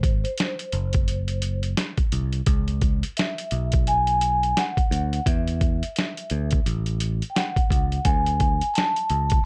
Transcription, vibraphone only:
Already playing: C5
0.24 C5
3.17 E5
3.88 G#5
4.58 F#5
5.27 E5
7.30 G5
7.36 F#5
8.05 G#5
8.74 A5

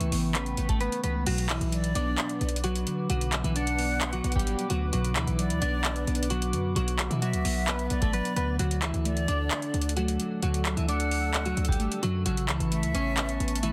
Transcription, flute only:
1.72 D5
3.56 F#5
5.39 D5
7.22 E5
7.91 D5
9.05 D5
10.88 F#5
12.72 E5

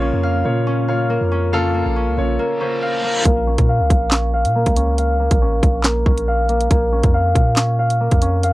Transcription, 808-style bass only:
Already playing: A#1
0.13 F2
0.45 A#2
1.21 F2
1.86 A#1
2.07 C#2
2.18 A#1
3.25 A#1
3.58 A#2
3.80 C#2
3.90 A#1
4.45 A#2
4.66 C#2
5.31 A1
5.63 A#1
6.06 A#1
6.71 A#1
7.04 F2
7.35 A#2
8.12 F2

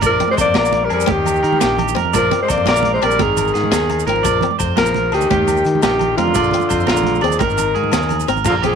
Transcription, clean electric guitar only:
0.02 D5
0.37 C5
0.54 A#4
0.90 G#4
1.07 G4
1.43 A#4
1.60 G4
1.96 A#4
2.13 D5
2.48 C5
2.67 A#4
3.03 D5
3.20 A#4
3.54 G#4
3.71 G#4
4.07 A#4
4.23 D5
4.59 C5
4.77 A#4
5.13 G#4
5.30 G4
5.83 G4
6.17 A#4
6.35 D5
6.69 C5
6.87 A#4
7.22 D5
7.39 A#4
7.75 G#4
7.93 G#4
8.29 A#4
8.46 A#4
8.62 G4

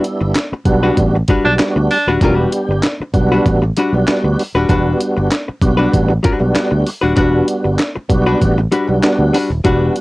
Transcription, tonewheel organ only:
Already playing: G3 B3 D4 E4
0.65 G3 B3 D4 F#4
1.44 F#3 B3 D4 F#4
1.51 G3
2.21 G3 B3 D4 G4
3.13 G3 B3 D4 F#4
3.93 G3 B3 D4 F#4
4.69 G3 B3 D4 F#4
5.62 G3 B3 D4 F#4
6.40 G3 B3 D4 F#4
7.16 F#3 B3 D4 F#4
7.23 G3
8.09 G3 B3 D4 F#4
8.88 G3 B3 D4 F#4
9.64 G3 B3 D4 F#4

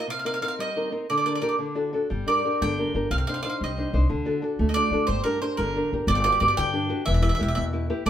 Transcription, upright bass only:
2.11 G1
2.62 G1
2.94 G1
3.11 C2
3.61 C2
3.93 C2
4.10 D2
4.59 D2
4.91 D2
5.08 G1
5.58 G1
5.92 G1
6.07 G1
6.41 G1
6.58 G2
7.07 E1
7.41 E1
7.58 E2
8.06 A1

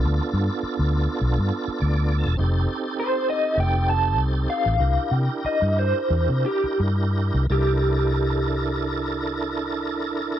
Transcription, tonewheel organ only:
Already playing: B3 D4 F4 A4
1.80 D5
2.18 A5
2.37 C4 D#4 G4 A4
4.77 D4 E4 G4 A#4
7.50 D4 E4 A4 A#4

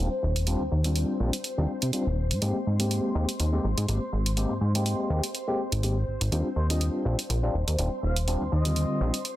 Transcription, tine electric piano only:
0.47 G3 C4 D4 F4
0.85 G3 C4 D4 F4
1.20 G3 C4 D4 F4
1.58 G3 C4 D4 F4
1.93 G3 C4 D4 F4
2.42 G#3 A#3 C4 G4
2.79 G#3 A#3 C4 G4
3.15 G#3 A#3 C4 G4
3.53 G#3 A#3 C4 G4
3.88 G#3 A#3 C4 G4
4.37 G#3 A#3 C4 G4
4.75 G#3 A#3 C4 G4
5.10 G#3 A#3 C4 G4
5.47 G#3 A#3 C4 G4
5.83 G#3 A#3 C4 G4
6.32 G3 C4 D4 F4
6.70 G3 C4 D4 F4
7.05 G3 C4 D4 F4
7.43 G3 C4 D4 F4
7.78 G3 C4 D4 F4
8.27 G3 C4 D4 F4
8.65 D3 G3 C4 F4
9.01 G3 C4 D4 F4

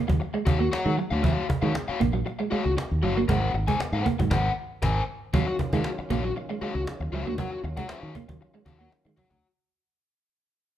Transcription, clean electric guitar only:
0.08 F#3
0.34 G#3
0.46 muted clean electric guitar stroke
0.60 A#3
0.72 muted clean electric guitar stroke
0.86 G#3
0.97 F#3
1.23 F#3
1.49 muted clean electric guitar stroke
1.62 G#3
1.74 muted clean electric guitar stroke
2.00 A#3
2.14 F#3
2.26 muted clean electric guitar stroke
2.40 G#3
2.52 G#3
2.78 muted clean electric guitar stroke
3.03 F#3
3.17 A#3
3.29 G#3
3.55 muted clean electric guitar stroke
3.68 G#3
3.80 muted clean electric guitar stroke
4.05 A#3
4.20 F#3
5.34 F#3
5.60 muted clean electric guitar stroke
5.73 G#3
5.86 muted clean electric guitar stroke
6.10 A#3
6.24 F#3
6.36 muted clean electric guitar stroke
6.50 G#3
6.62 G#3
6.88 muted clean electric guitar stroke
7.13 F#3
7.27 A#3
7.39 F#3
7.64 muted clean electric guitar stroke
7.78 G#3
7.90 muted clean electric guitar stroke
8.16 A#3
8.30 F#3
8.55 G#3
8.67 muted clean electric guitar stroke
8.81 A#3
8.93 muted clean electric guitar stroke
9.06 G#3
9.18 F#3

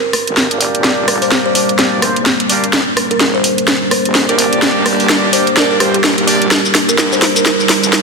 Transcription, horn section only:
0.51 A#3 D4 G4 D5
0.61 A#3 D4 G4 D5
1.55 A#3 D4 G4 D5
1.79 A#3 D4 G4 D5
2.02 A#3 C4 G4 C5
2.50 A#3 D4 G4 D5
4.29 A#3 D4 G4 D5
4.38 A#3 D4 G4 D5
5.33 A#3 D4 G4 D5
5.57 A#3 D4 G4 D5
5.80 A#3 C4 G4 C5
6.28 A#3 D4 G4 D5

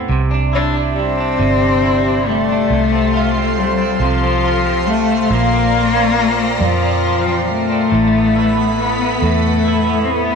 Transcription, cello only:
0.55 D4
0.99 C4
2.28 A3
3.58 G3
4.02 F3
4.87 A3
5.32 A#3
6.64 F3
7.49 A3
8.81 B3
9.23 A3
10.04 C4
10.10 B3

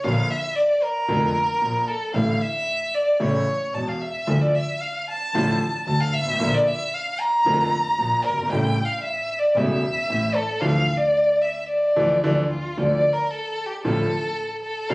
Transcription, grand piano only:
0.04 A#1 A#2 D3 F3 A#3 F4
1.08 F1 F2 D3 F3 A#3 F4
1.62 A#1 A#2
2.14 A1 A2 D3 E3 A3 E4
3.20 A1 A2 C#3 E3 A3 E4
3.74 E1 E2
4.27 D2 D3 F3 A3 F4
5.34 A1 A2 D3 F3 A3 F4
5.87 D2 D3
6.22 G1
6.27 G#1
6.34 A1
6.40 A#1 A#2 D3 F3 A#3 F4
7.46 F1 F2 D3 F3 A#3 F4
7.98 A#1 A#2
8.32 F#1
8.38 G1
8.45 G#1
8.52 A1 A2 C#3 G3 A3 E4
9.57 E1 E2 C#3 G3 A3 E4
10.10 A1 A2
10.61 D3 E3 F3
11.96 D3 E3 F3
12.24 D3 E3 F3
12.77 D2 D3 F3 A3 F4
13.84 A1 A2 D3 F3 A3 F4
14.90 C#2 C#3 E3 A3 E4

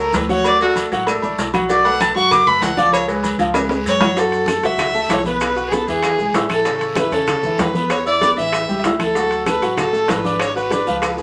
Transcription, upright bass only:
Already playing: C#2
0.13 D2
0.92 A1
1.23 A1
1.38 B1
2.16 F#2
2.62 C#2
3.38 C#2
3.85 F#2
4.63 C#2
5.10 B1
5.87 E2
6.18 B1
6.34 A1
7.11 E2
7.59 E2
8.37 A1
8.69 C#2
8.84 D2
9.62 A1
10.09 G#1
10.87 C#2
11.17 F2

